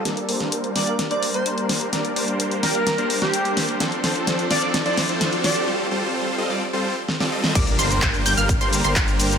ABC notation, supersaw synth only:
X:1
M:4/4
L:1/16
Q:1/4=128
K:Gm
V:1 name="Supersaw synth"
[G,B,DBd]2 [G,B,DBc]4 [G,B,DBg] [G,B,DBf] z [G,B,DBc]2 [G,B,DBc]4- [G,B,DBc] | [G,B,DBd]2 [G,B,DBc]4 [G,B,DBg] [G,B,DBf] z [G,B,DBc]2 [G,B,DBc]4- [G,B,DBc] | [F,CDAc]2 [F,CDAc]4 [F,CDAf] [F,CDAd] z [F,CDAc]2 [F,CDAc]4- [F,CDAc] | [G,CFAc]2 [G,CFAc]4 [G,CFAe] [G,CFAd] z [G,CFAc]2 z2 [G,CFAd] [G,CFAe]2 |
[G,B,DBd]2 [G,B,DBc]4 [G,B,DBg] [G,B,DBf] z [G,B,DBc]2 [G,B,DBc]4- [G,B,DBc] |]